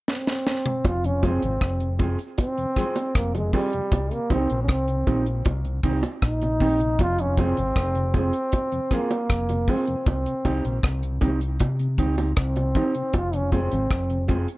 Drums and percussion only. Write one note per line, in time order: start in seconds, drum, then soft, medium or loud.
0.08 snare medium
0.27 snare medium
0.47 snare medium
0.66 mid tom medium
0.85 kick loud
0.85 closed hi-hat medium
0.85 high bongo medium
1.04 closed hi-hat soft
1.23 kick medium
1.23 closed hi-hat medium
1.23 high bongo medium
1.42 closed hi-hat medium
1.61 kick loud
1.61 cross-stick loud
1.61 closed hi-hat medium
1.80 closed hi-hat soft
1.99 kick loud
1.99 closed hi-hat medium
1.99 high bongo soft
1.99 low bongo medium
2.19 closed hi-hat soft
2.38 kick loud
2.38 closed hi-hat medium
2.38 high bongo medium
2.58 closed hi-hat soft
2.76 kick medium
2.76 cross-stick medium
2.76 closed hi-hat medium
2.96 closed hi-hat soft
2.96 high bongo medium
3.15 kick loud
3.15 cross-stick loud
3.15 closed hi-hat medium
3.35 closed hi-hat medium
3.35 high bongo soft
3.53 kick medium
3.53 open hi-hat medium
3.53 low bongo medium
3.73 closed hi-hat soft
3.92 kick loud
3.92 closed hi-hat medium
3.92 high bongo medium
4.11 closed hi-hat soft
4.30 kick medium
4.30 closed hi-hat medium
4.30 high bongo medium
4.50 closed hi-hat soft
4.68 kick loud
4.68 cross-stick loud
4.68 closed hi-hat medium
4.88 closed hi-hat soft
5.07 kick medium
5.07 closed hi-hat medium
5.07 high bongo soft
5.07 low bongo medium
5.26 closed hi-hat soft
5.45 kick loud
5.45 closed hi-hat medium
5.45 high bongo medium
5.65 closed hi-hat soft
5.83 kick medium
5.83 closed hi-hat medium
6.03 closed hi-hat medium
6.03 high bongo medium
6.22 kick loud
6.22 cross-stick loud
6.22 closed hi-hat medium
6.42 closed hi-hat medium
6.42 high bongo soft
6.60 kick medium
6.60 open hi-hat medium
6.60 low bongo medium
6.80 closed hi-hat soft
6.99 kick loud
6.99 closed hi-hat medium
6.99 high bongo medium
7.18 closed hi-hat soft
7.37 kick medium
7.37 closed hi-hat medium
7.37 high bongo medium
7.57 closed hi-hat soft
7.76 kick loud
7.76 cross-stick loud
7.76 closed hi-hat medium
7.95 closed hi-hat soft
8.14 kick medium
8.14 closed hi-hat medium
8.14 high bongo soft
8.14 low bongo medium
8.33 closed hi-hat soft
8.52 kick loud
8.52 closed hi-hat medium
8.52 high bongo medium
8.72 closed hi-hat soft
8.91 kick medium
8.91 cross-stick medium
8.91 closed hi-hat medium
9.11 closed hi-hat soft
9.11 high bongo medium
9.30 kick loud
9.30 cross-stick loud
9.30 closed hi-hat medium
9.49 closed hi-hat medium
9.49 high bongo soft
9.68 kick medium
9.68 open hi-hat medium
9.68 low bongo medium
9.87 closed hi-hat soft
10.06 kick loud
10.06 closed hi-hat medium
10.06 high bongo medium
10.26 closed hi-hat medium
10.45 kick medium
10.45 closed hi-hat medium
10.45 high bongo medium
10.65 closed hi-hat soft
10.83 kick loud
10.83 cross-stick loud
10.83 closed hi-hat medium
11.03 closed hi-hat soft
11.21 kick loud
11.21 closed hi-hat medium
11.21 high bongo soft
11.21 low bongo medium
11.41 closed hi-hat soft
11.60 kick loud
11.60 closed hi-hat medium
11.60 high bongo medium
11.79 closed hi-hat soft
11.98 kick medium
11.98 closed hi-hat medium
12.18 closed hi-hat medium
12.18 high bongo medium
12.37 kick loud
12.37 cross-stick medium
12.37 closed hi-hat medium
12.56 closed hi-hat medium
12.56 high bongo soft
12.75 kick loud
12.75 closed hi-hat medium
12.75 low bongo medium
12.95 closed hi-hat soft
13.13 kick loud
13.13 closed hi-hat medium
13.13 high bongo medium
13.33 closed hi-hat soft
13.52 kick medium
13.52 closed hi-hat medium
13.52 high bongo medium
13.72 closed hi-hat medium
13.91 kick loud
13.91 cross-stick loud
13.91 closed hi-hat medium
14.10 closed hi-hat soft
14.28 kick medium
14.28 closed hi-hat medium
14.28 high bongo soft
14.28 low bongo medium
14.48 closed hi-hat medium